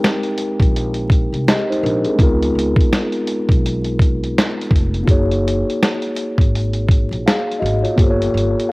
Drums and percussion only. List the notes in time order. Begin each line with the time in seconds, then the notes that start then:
0.04 snare, closed hi-hat
0.23 closed hi-hat
0.38 closed hi-hat
0.60 kick, closed hi-hat
0.76 closed hi-hat
0.94 closed hi-hat
1.10 kick, closed hi-hat
1.34 closed hi-hat
1.48 snare, closed hi-hat
1.72 closed hi-hat
1.86 closed hi-hat
2.04 closed hi-hat
2.19 kick, closed hi-hat
2.42 closed hi-hat
2.59 closed hi-hat
2.76 kick
2.81 closed hi-hat
2.93 snare, closed hi-hat
3.12 closed hi-hat
3.27 closed hi-hat
3.49 kick, closed hi-hat
3.66 closed hi-hat
3.84 closed hi-hat
3.99 kick, closed hi-hat
4.24 closed hi-hat
4.38 snare, closed hi-hat
4.62 closed hi-hat
4.71 kick
4.76 closed hi-hat
4.94 closed hi-hat
5.08 kick, closed hi-hat
5.32 closed hi-hat
5.48 closed hi-hat
5.70 closed hi-hat
5.83 snare, closed hi-hat
6.02 closed hi-hat
6.17 closed hi-hat
6.38 kick, closed hi-hat
6.55 closed hi-hat
6.73 closed hi-hat
6.89 kick, closed hi-hat
7.13 closed hi-hat
7.28 snare, closed hi-hat
7.52 closed hi-hat
7.66 closed hi-hat
7.85 closed hi-hat
7.98 kick, closed hi-hat
8.22 closed hi-hat
8.37 closed hi-hat
8.59 closed hi-hat